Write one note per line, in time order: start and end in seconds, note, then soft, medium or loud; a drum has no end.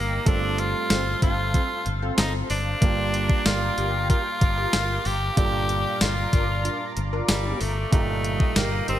0.00 0.18 G1 loud
0.00 0.26 A#3 medium
0.00 0.29 A#3 loud
0.00 0.26 D#4 soft
0.00 0.27 G4 soft
0.00 0.27 A#4 medium
0.00 0.24 D#5 medium
0.00 0.24 G5 medium
0.00 0.22 A#5 medium
0.00 0.24 D#6 medium
0.25 0.73 G1 loud
0.25 1.18 G2 medium
0.25 2.77 A3 medium
0.25 2.78 C4 medium
0.25 0.61 D4 loud
0.25 2.78 F4 medium
0.25 2.79 A4 medium
0.25 2.78 A4 medium
0.25 2.79 C5 medium
0.25 2.79 F5 medium
0.25 2.79 C6 medium
0.25 kick loud
0.25 closed hi-hat loud
0.58 1.23 F4 loud
0.58 closed hi-hat medium
0.90 1.13 G1 loud
0.90 1.04 C4 medium
0.90 1.04 F4 medium
0.90 1.04 A4 medium
0.90 snare loud
0.90 closed hi-hat medium
0.90 tambourine medium
1.22 1.57 G1 loud
1.22 1.36 C4 medium
1.22 1.36 F4 medium
1.22 1.88 F4 loud
1.22 1.36 A4 loud
1.22 kick medium
1.22 closed hi-hat medium
1.54 1.68 C4 medium
1.54 1.68 F4 medium
1.54 1.68 A4 medium
1.54 kick medium
1.54 closed hi-hat medium
1.86 2.09 G1 medium
1.86 closed hi-hat medium
2.02 2.48 C4 medium
2.02 2.48 F4 loud
2.02 2.48 A4 loud
2.18 2.41 G1 loud
2.18 2.33 D#4 medium
2.18 snare loud
2.18 closed hi-hat loud
2.18 tambourine medium
2.50 2.73 G1 medium
2.50 3.48 D4 loud
2.50 open hi-hat medium
2.81 3.28 G1 loud
2.81 3.74 G2 medium
2.81 5.33 A#3 medium
2.81 5.33 D4 medium
2.81 5.34 F4 medium
2.81 5.34 G4 medium
2.81 7.89 F5 medium
2.81 5.35 G5 medium
2.81 7.89 A#5 medium
2.81 7.89 D6 medium
2.81 kick loud
2.81 closed hi-hat loud
3.14 closed hi-hat medium
3.30 kick loud
3.46 3.69 G1 loud
3.46 3.59 F4 medium
3.46 4.10 F4 loud
3.46 3.59 G4 medium
3.46 3.59 A#4 medium
3.46 snare loud
3.46 closed hi-hat medium
3.46 tambourine medium
3.78 4.12 G1 medium
3.78 3.91 F4 medium
3.78 3.91 G4 medium
3.78 3.91 A#4 loud
3.78 closed hi-hat medium
4.10 4.23 F4 medium
4.10 5.07 F4 loud
4.10 4.23 G4 medium
4.10 4.23 A#4 medium
4.10 kick medium
4.10 closed hi-hat medium
4.41 4.64 G1 loud
4.41 kick medium
4.41 closed hi-hat medium
4.58 5.03 F4 loud
4.58 5.03 G4 medium
4.58 5.03 A#4 loud
4.73 4.97 G1 loud
4.73 snare loud
4.73 closed hi-hat loud
4.73 tambourine medium
5.05 5.28 G1 loud
5.05 5.37 G4 loud
5.05 open hi-hat medium
5.36 5.83 G1 loud
5.36 6.29 G2 medium
5.36 7.88 A#2 medium
5.36 7.88 D4 medium
5.36 7.89 F4 medium
5.36 5.97 G4 loud
5.36 5.44 A4 medium
5.36 7.90 D5 medium
5.36 kick loud
5.36 closed hi-hat loud
5.45 7.92 A#5 medium
5.69 closed hi-hat medium
6.01 6.24 G1 loud
6.01 6.15 D4 medium
6.01 6.15 F4 medium
6.01 6.93 F4 loud
6.01 6.15 A#4 medium
6.01 snare loud
6.01 closed hi-hat medium
6.01 tambourine medium
6.33 6.67 G1 loud
6.33 6.47 D4 medium
6.33 6.47 F4 medium
6.33 6.47 A#4 loud
6.33 kick medium
6.33 closed hi-hat medium
6.65 6.79 D4 medium
6.65 6.78 F4 medium
6.65 6.79 A#4 medium
6.65 closed hi-hat medium
6.97 7.20 G1 medium
6.97 closed hi-hat medium
7.13 7.58 D4 medium
7.13 7.58 F4 medium
7.13 7.58 A#4 loud
7.28 7.52 G1 loud
7.28 7.62 G3 medium
7.28 snare loud
7.28 closed hi-hat loud
7.28 tambourine medium
7.61 7.84 G1 loud
7.61 7.92 A3 medium
7.61 open hi-hat medium
7.91 8.39 G1 loud
7.91 8.84 G2 medium
7.91 8.99 A#2 medium
7.91 8.58 A3 loud
7.91 8.99 D#4 medium
7.91 8.99 G4 medium
7.91 8.99 D#5 medium
7.91 8.99 G5 medium
7.91 8.99 A#5 medium
7.91 8.99 D#6 medium
7.91 kick loud
7.91 closed hi-hat loud
8.24 closed hi-hat medium
8.40 kick loud
8.56 8.79 G1 loud
8.56 8.89 A#3 medium
8.56 8.70 D#4 medium
8.56 8.70 G4 medium
8.56 8.70 A#4 medium
8.56 snare loud
8.56 closed hi-hat medium
8.56 tambourine medium
8.88 8.99 G1 loud
8.88 8.99 C4 medium
8.88 8.99 D#4 medium
8.88 8.99 G4 medium
8.88 8.99 A#4 loud
8.88 closed hi-hat medium